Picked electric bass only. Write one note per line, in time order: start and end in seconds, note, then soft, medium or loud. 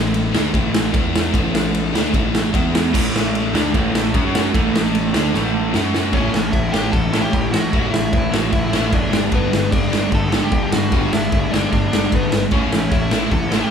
0.00 0.30 A1 medium
0.35 0.53 D2 loud
0.54 0.91 A1 loud
0.94 1.31 E2 loud
1.34 1.90 A1 loud
1.94 2.12 D2 medium
2.15 2.51 A1 loud
2.54 2.91 E2 loud
2.95 3.50 A1 loud
3.54 3.72 D2 loud
3.74 4.11 A1 loud
4.15 4.51 F#2 loud
4.55 5.10 A1 loud
5.14 5.32 D2 loud
5.34 5.71 A1 medium
5.74 6.15 F#2 loud
6.13 6.27 A1 medium
6.35 6.48 A1 medium
6.54 6.67 A1 medium
6.75 6.88 A1 medium
6.93 7.21 A1 medium
7.34 7.47 A1 loud
7.54 7.67 A2 medium
7.73 7.87 A1 medium
7.93 8.07 A1 medium
8.13 8.27 A1 medium
8.34 8.47 A1 medium
8.53 8.66 A1 medium
8.74 8.87 A1 medium
8.93 9.06 F#1 loud
9.14 9.27 G1 medium
9.33 9.46 G1 loud
9.53 9.67 G1 medium
9.73 9.86 G1 medium
9.93 10.07 G1 medium
10.13 10.40 G1 medium
10.52 10.66 G1 loud
10.73 10.87 G2 medium
10.92 11.06 G1 medium
11.13 11.27 G1 medium
11.33 11.46 G1 medium
11.53 11.66 G1 medium
11.73 11.86 G1 loud
11.93 12.06 G1 medium
12.13 12.26 G1 medium
12.32 12.46 G1 medium
12.53 12.66 A1 medium
12.73 12.86 A1 medium
12.92 13.05 A1 medium
13.11 13.25 A1 medium
13.32 13.59 A1 medium